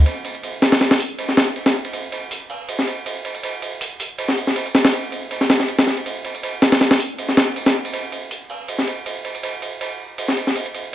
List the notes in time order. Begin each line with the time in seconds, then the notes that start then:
0.06 ride
0.25 ride
0.35 ride
0.43 ride
0.62 snare, ride
0.72 snare, ride
0.81 snare, ride
0.91 snare, ride
1.00 open hi-hat
1.19 ride
1.29 snare
1.37 snare, ride
1.56 ride
1.66 snare, ride
1.85 ride
1.93 ride
2.12 ride
2.31 open hi-hat
2.50 ride
2.69 ride
2.79 snare
2.87 ride
3.06 ride
3.25 ride
3.35 ride
3.43 ride
3.62 ride
3.81 open hi-hat
4.00 open hi-hat
4.18 ride
4.28 snare
4.37 ride
4.47 snare
4.56 ride
4.66 ride
4.75 snare, ride
4.85 snare, ride
4.93 ride
5.12 ride
5.31 ride
5.41 snare
5.50 snare, ride
5.60 snare
5.68 ride
5.78 snare, ride
5.87 snare
5.97 ride
6.06 ride
6.25 ride
6.35 ride
6.43 ride
6.62 snare, ride
6.72 snare, ride
6.81 snare, ride
6.91 snare, ride
7.00 open hi-hat
7.18 ride
7.29 snare
7.37 snare, ride
7.56 ride
7.66 snare, ride
7.85 ride
7.93 ride
8.12 ride
8.31 open hi-hat
8.50 ride
8.68 ride
8.79 snare
8.87 ride
9.06 ride
9.25 ride
9.35 ride
9.43 ride
9.62 ride
9.81 ride
10.18 ride
10.28 snare
10.37 ride
10.47 snare
10.56 ride
10.66 ride
10.74 ride